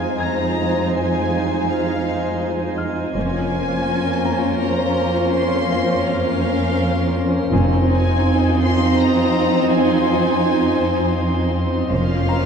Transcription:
0.00 3.12 F2 soft
0.00 3.12 G#3 soft
0.00 3.12 D#4 soft
0.00 3.11 F4 soft
0.00 3.11 C5 soft
0.00 3.12 C5 soft
0.00 3.11 D#5 soft
0.00 0.22 G#5 soft
0.00 3.12 G#5 soft
0.00 1.28 F6 soft
0.20 2.38 G#5 soft
0.20 0.95 A#5 medium
0.20 2.38 G#6 soft
0.95 1.68 G#5 medium
1.69 2.42 F5 soft
2.78 4.92 F6 soft
3.15 3.84 F1 soft
3.15 7.48 F2 soft
3.15 7.48 A#3 soft
3.15 7.48 C#4 soft
3.15 7.52 C#4 soft
3.15 7.49 F4 soft
3.15 7.52 A#4 soft
3.15 7.48 C5 soft
3.15 4.57 G#5 medium
3.15 7.52 C6 soft
4.25 6.39 A#5 soft
4.61 5.33 A#5 medium
5.34 6.05 C6 medium
5.72 7.86 F5 soft
6.06 7.52 F5 medium
7.52 8.21 F1 medium
7.52 11.87 F2 medium
7.52 11.87 C4 medium
7.52 11.87 D#4 medium
7.52 11.87 F4 medium
7.52 11.87 C5 medium
7.52 11.92 C5 soft
7.52 11.92 D#5 soft
7.52 8.61 G#5 soft
7.52 11.88 C6 medium
7.88 8.58 G#5 medium
8.63 10.77 G#5 soft
8.63 8.99 C6 medium
8.99 9.72 A#5 medium
9.72 11.51 G#5 medium
11.89 12.46 F1 soft
11.89 12.46 F2 soft
11.89 12.46 A#3 soft
11.89 12.46 C#4 soft
11.89 12.46 F4 soft
11.89 12.46 A#4 soft
11.89 12.46 C5 soft
11.89 12.46 F5 medium
11.89 12.46 C6 soft
12.29 12.46 A#5 soft

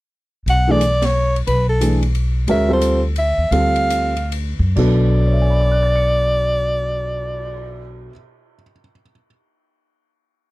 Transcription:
0.46 1.43 B1 medium
0.46 0.73 F#5 loud
0.46 ride medium
0.68 0.79 E3 medium
0.68 0.79 A3 medium
0.68 0.80 D4 medium
0.68 0.80 G#4 medium
0.68 1.07 D5 medium
0.81 hi-hat pedal medium
0.81 ride medium
1.02 1.37 C#5 loud
1.02 snare medium
1.02 ride medium
1.36 ride soft
1.47 2.43 B1 medium
1.47 1.67 B4 medium
1.47 ride medium
1.69 2.00 A4 medium
1.81 1.99 E3 medium
1.81 2.00 A3 soft
1.81 2.00 D4 soft
1.81 2.00 G#4 medium
1.81 hi-hat pedal medium
1.81 ride medium
2.02 ride soft
2.15 ride soft
2.47 3.34 D2 medium
2.47 2.66 G#3 medium
2.47 2.67 C#4 medium
2.47 2.67 F#4 medium
2.47 2.67 A#4 medium
2.47 ride medium
2.51 2.69 E5 medium
2.68 2.98 G3 medium
2.68 2.98 C4 medium
2.68 2.99 F4 medium
2.68 2.99 A4 medium
2.73 3.03 C5 medium
2.81 hi-hat pedal medium
2.81 ride medium
3.16 3.53 E5 medium
3.16 ride medium
3.38 3.51 D#2 medium
3.51 4.55 D2 medium
3.51 4.11 G3 medium
3.51 4.11 C4 medium
3.51 4.11 F4 soft
3.51 4.11 A4 medium
3.51 4.32 F5 loud
3.51 ride medium
3.76 ride soft
3.90 hi-hat pedal medium
3.90 ride medium
4.17 ride soft
4.32 ride medium
4.59 4.76 F#2 medium
4.59 kick soft
4.76 8.05 B1 medium
4.76 8.09 B2 medium
4.76 8.10 F#3 medium
4.76 8.10 B3 medium
4.76 8.11 D4 medium
4.76 8.12 A4 medium
4.76 8.05 D5 medium
4.76 kick medium
4.76 crash medium
5.07 cymbal swell soft
5.26 8.55 C#5 soft
5.33 8.62 E5 soft
5.41 8.70 G#5 soft
5.50 8.79 B5 soft
5.61 8.89 D6 soft
5.71 9.00 F#6 soft
5.83 9.11 A6 soft
5.96 9.24 C#7 soft

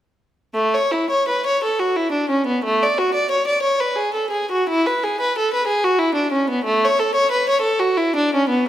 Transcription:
0.54 0.73 A3 medium
0.74 0.92 C#5 medium
0.91 1.10 E4 soft
1.10 1.27 C#5 medium
1.28 1.45 B4 soft
1.46 1.62 C#5 medium
1.64 1.79 A4 medium
1.79 1.96 F#4 soft
1.97 2.13 E4 medium
2.12 2.29 D4 soft
2.29 2.46 C#4 soft
2.46 2.63 B3 medium
2.64 2.80 A3 medium
2.83 2.98 D5 medium
2.98 3.14 F#4 medium
3.14 3.30 D5 medium
3.31 3.47 C#5 medium
3.47 3.63 D5 medium
3.62 3.79 C#5 medium
3.80 3.97 B4 medium
3.96 4.13 G#4 medium
4.14 4.31 A4 medium
4.30 4.48 G#4 medium
4.51 4.68 F#4 medium
4.69 4.86 E4 medium
4.86 5.03 B4 medium
5.03 5.20 G#4 medium
5.21 5.36 B4 medium
5.38 5.54 A4 medium
5.54 5.69 B4 medium
5.67 5.84 G#4 medium
5.84 6.02 F#4 medium
5.99 6.17 E4 medium
6.15 6.33 D4 medium
6.32 6.50 C#4 medium
6.50 6.67 B3 medium
6.64 6.82 A3 medium
6.85 7.01 C#5 medium
6.99 7.16 A4 medium
7.15 7.32 C#5 medium
7.31 7.48 B4 medium
7.49 7.66 C#5 medium
7.61 7.80 A4 medium
7.80 7.98 F#4 medium
7.97 8.16 E4 medium
8.16 8.34 D4 medium
8.35 8.52 C#4 medium
8.49 8.69 B3 medium

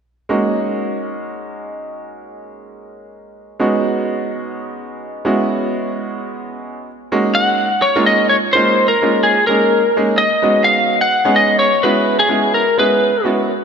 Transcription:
0.29 3.55 G#3 medium
0.29 3.55 A#3 medium
0.29 3.56 C#4 medium
0.29 3.56 D#4 medium
0.29 3.56 F#4 medium
3.60 5.21 G#3 medium
3.60 5.21 B3 medium
3.60 5.21 C#4 medium
3.60 5.21 D#4 medium
3.60 5.22 F#4 medium
5.25 6.86 G#3 medium
5.25 6.86 B3 medium
5.25 6.86 C#4 medium
5.25 6.87 E4 medium
5.25 6.87 F#4 medium
7.12 7.67 G#3 medium
7.12 7.67 A#3 medium
7.12 7.67 C#4 medium
7.12 7.67 D#4 medium
7.12 7.67 F#4 medium
7.35 7.84 F#5 medium
7.82 8.06 C#5 medium
7.96 8.34 G#3 medium
7.96 8.34 A#3 medium
7.96 8.34 C#4 medium
7.96 8.34 D#4 medium
7.96 8.34 F4 medium
8.06 8.29 D#5 medium
8.29 8.36 C#5 medium
8.53 8.85 G#3 medium
8.53 8.85 A#3 medium
8.53 8.86 C#4 medium
8.53 8.85 D#4 medium
8.53 8.86 F4 medium
8.53 8.86 C5 medium
8.88 9.23 A#4 medium
9.02 9.33 G#3 medium
9.02 9.32 A#3 medium
9.02 9.33 C#4 medium
9.02 9.33 D#4 medium
9.02 9.33 F4 medium
9.23 9.47 G#4 medium
9.47 9.79 G#3 medium
9.47 9.80 A#3 medium
9.47 9.80 C#4 medium
9.47 9.80 D#4 medium
9.47 9.80 G#4 medium
9.47 9.97 A#4 medium
9.96 10.20 G#3 medium
9.96 10.19 A#3 medium
9.96 10.19 C#4 medium
9.96 10.20 D#4 medium
9.96 10.20 G#4 medium
10.18 10.67 D#5 medium
10.42 10.97 G#3 medium
10.42 10.96 B3 medium
10.42 10.97 C#4 medium
10.42 10.97 D#4 medium
10.42 10.97 F#4 medium
10.64 10.98 F5 medium
11.01 11.34 F#5 loud
11.25 11.64 G#3 medium
11.25 11.63 B3 medium
11.25 11.63 C#4 medium
11.25 11.64 D#4 medium
11.25 11.64 G#4 medium
11.36 11.58 D#5 medium
11.59 11.84 C#5 medium
11.83 12.15 G#3 medium
11.83 12.15 B3 medium
11.83 12.15 C#4 medium
11.83 12.15 E4 medium
11.83 12.15 F#4 medium
11.83 12.19 B4 medium
12.19 12.54 G#4 medium
12.29 12.61 G#3 medium
12.29 12.61 B3 medium
12.29 12.61 C#4 medium
12.29 12.61 E4 medium
12.29 12.61 G#4 medium
12.54 12.78 A#4 medium
12.78 13.09 G#3 medium
12.78 13.09 B3 medium
12.78 13.09 C#4 medium
12.78 13.09 E4 medium
12.78 13.09 G#4 medium
12.78 13.28 B4 medium
13.24 13.48 G#3 medium
13.24 13.48 B3 medium
13.24 13.48 C#4 medium
13.24 13.48 E4 medium
13.24 13.49 F#4 medium

